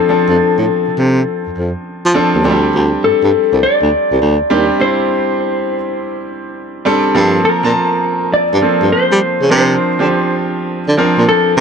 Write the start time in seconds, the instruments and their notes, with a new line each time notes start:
Already playing: grand piano F3 C4 D4 A4, clean electric guitar A4
0.09 grand piano F3 C4 D4 A4
0.29 baritone saxophone F2
0.58 baritone saxophone A2
0.87 baritone saxophone C3
0.97 baritone saxophone C3
1.46 baritone saxophone F2
1.56 baritone saxophone F2
2.05 baritone saxophone F3
2.14 grand piano F3 C4 D4 A4
2.35 baritone saxophone D#2
2.44 baritone saxophone D2, grand piano F3 C4 D4 A4
2.50 grand piano G3
2.74 baritone saxophone D2
3.04 baritone saxophone G2, clean electric guitar A4
3.23 baritone saxophone G2
3.52 baritone saxophone C2
3.63 clean electric guitar D5
3.82 baritone saxophone D2
4.11 baritone saxophone C2
4.21 baritone saxophone D2
4.50 baritone saxophone D#2, grand piano G3 C4 D4 G4
4.79 grand piano G3 C4 D4 E4, clean electric guitar C5
6.85 grand piano G3 C4 D4 A4
7.15 baritone saxophone G2, grand piano F3 A#3 C4 A4
7.45 clean electric guitar A#4
7.63 baritone saxophone A#2, grand piano F3 A#3 C4 A5
8.34 clean electric guitar D5
8.53 baritone saxophone G2
8.62 grand piano F3 A#3 C4 A4
8.82 baritone saxophone G2
8.92 clean electric guitar C5
9.11 baritone saxophone G3
9.41 baritone saxophone C#3
9.50 baritone saxophone C3, grand piano F3 C4 D4 A#4, clean electric guitar C5
9.99 baritone saxophone D3, grand piano F3 C4 D4 G4
10.88 baritone saxophone D3
10.97 grand piano F3 C4 D4 A#4
11.18 baritone saxophone A#2
11.29 clean electric guitar A4
11.57 baritone saxophone C3, clean electric guitar A#4